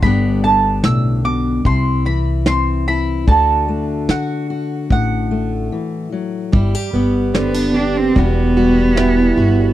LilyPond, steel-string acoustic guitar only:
\new Staff \with { instrumentName = "Steel-string acoustic guitar" } { \time 4/4 \key g \major \tempo 4 = 74 << { <d b d' g'>2 e'4 c'8 e'8 | <a d' fis'>4 fis'8 fis'2~ fis'8 | e'16 g'16 b4. fis'8 g4. | } \\ { g,8 d8 a,8 b,8 c8 e4. | d8 a4. a,8 a8 e8 fis8 | r4 d4 e,4 e4 | } >> }